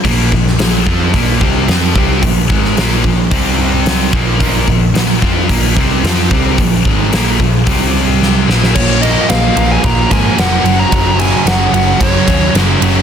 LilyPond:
<<
  \new Staff \with { instrumentName = "Lead electric guitar" } { \time 4/4 \key bes \minor \tempo 4 = 110 r1 | r1 | r1 | r1 |
des''8 ees''8 f''8. aes''16 bes''8 aes''8 ges''8. bes''16~ | bes''8 aes''8 ges''8 ges''8 des''4 r4 | }
  \new Staff \with { instrumentName = "Tonewheel organ" } { \time 4/4 \key bes \minor r1 | r1 | r1 | r1 |
<bes f' c''>2.~ <bes f' c''>8 <ges des' aes'>8~ | <ges des' aes'>1 | }
  \new Staff \with { instrumentName = "Distorted electric guitar" } { \clef bass \time 4/4 \key bes \minor <bes, f bes>8 <bes, f>8 <bes, f>8 <f c' f'>8 <bes, f bes>8 <c g c'>8 <f c' f'>8 <c g c'>8 | <bes, f>8 <aes, ees aes>8 <bes, f bes>8 <bes, f>8 <c g c'>4. <bes, f bes>8 | <bes, f bes>8 <bes, f>8 <bes, f>8 <f c' f'>8 <bes, f bes>8 <c g c'>8 <f c' f'>8 <c g c'>8 | <bes, f>8 <aes, ees aes>8 <bes, f bes>8 <bes, f>8 <c g c'>4. <bes, f bes>8 |
<bes, f bes>8 <bes, f bes>8 <bes, f bes>8 <bes, f bes>8 <bes, f bes>8 <bes, f bes>8 <bes, f bes>8 <ges, des ges>8 | <ges, des ges>8 <ges, des ges>8 <ges, des ges>8 <ges, des ges>8 <ges, des ges>8 <ges, des ges>8 <ges, des ges>8 <ges, des ges>8 | }
  \new Staff \with { instrumentName = "Distorted electric guitar" } { \clef bass \time 4/4 \key bes \minor <bes, f bes>8 <bes, f>8 <bes, f>8 <f c' f'>8 <bes, f bes>8 <c g c'>8 <f c' f'>8 <c g c'>8 | <bes, f>8 <aes, ees aes>8 <bes, f bes>8 <bes, f>8 <c g c'>4. <bes, f bes>8 | <bes, f bes>8 <bes, f>8 <bes, f>8 <f c' f'>8 <bes, f bes>8 <c g c'>8 <f c' f'>8 <c g c'>8 | <bes, f>8 <aes, ees aes>8 <bes, f bes>8 <bes, f>8 <c g c'>4. <bes, f bes>8 |
<bes, f bes>8 <bes, f bes>8 <bes, f bes>8 <bes, f bes>8 <bes, f bes>8 <bes, f bes>8 <bes, f bes>8 <ges, des ges>8 | <ges, des ges>8 <ges, des ges>8 <ges, des ges>8 <ges, des ges>8 <ges, des ges>8 <ges, des ges>8 <ges, des ges>8 <ges, des ges>8 | }
  \new Staff \with { instrumentName = "Picked electric bass" } { \clef bass \time 4/4 \key bes \minor bes,,8 bes,,8 bes,,8 f,8 bes,,8 c,8 f,8 c,8 | bes,,8 aes,,8 bes,,8 bes,,8 c,4. bes,,8 | bes,,8 bes,,8 bes,,8 f,8 bes,,8 c,8 f,8 c,8 | bes,,8 aes,,8 bes,,8 bes,,8 c,4. bes,,8 |
bes,,4 bes,,8 bes,,8 bes,,8 aes,8 f,,8 ges,,8 | ges,,4 ges,,8 ges,,8 ges,,8 ees,8 ges,,8 ges,,8 | }
  \new DrumStaff \with { instrumentName = "Drums" } \drummode { \time 4/4 <hho bd>8 bd16 sn16 <hho sn>8 bd8 <hho bd>8 bd8 <hho sn>8 bd8 | <hho bd>8 bd16 sn16 <hho sn>8 bd8 <hho bd>4 <hho sn>8 bd8 | <hho bd>8 bd8 <hho sn>8 bd8 <hho bd>8 bd8 <hho sn>8 bd8 | <hho bd>8 bd8 <hho sn>8 bd8 <hho bd>4 sn8 sn16 sn16 |
<cymc bd>8 cymr8 <cymr sn>8 cymr8 <bd cymr>8 <bd cymr>8 <cymr sn>8 cymr8 | <bd cymr>8 cymr8 <cymr sn>8 cymr8 <bd cymr>8 <bd cymr>8 <cymr sn>8 cymr8 | }
>>